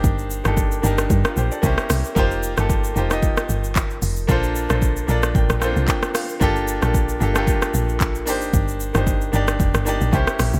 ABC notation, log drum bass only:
X:1
M:4/4
L:1/16
Q:"Swing 16ths" 1/4=113
K:Cdor
V:1 name="Log drum bass" clef=bass
G,,,3 G,,,3 G,,,2 G,, z B,,, z C,, z C,, z | F,,,3 G,,,3 F,,,3 z G,,,4 F,,,2 | B,,,3 B,,,3 B,,,2 A,,, B,,,2 C,, z4 | G,,,3 B,,,3 G,,,3 z B,,,4 G,,,2 |
G,,,3 G,,,3 G,,,2 F,,, G,,,2 B,,, C,, z B,,, C,, |]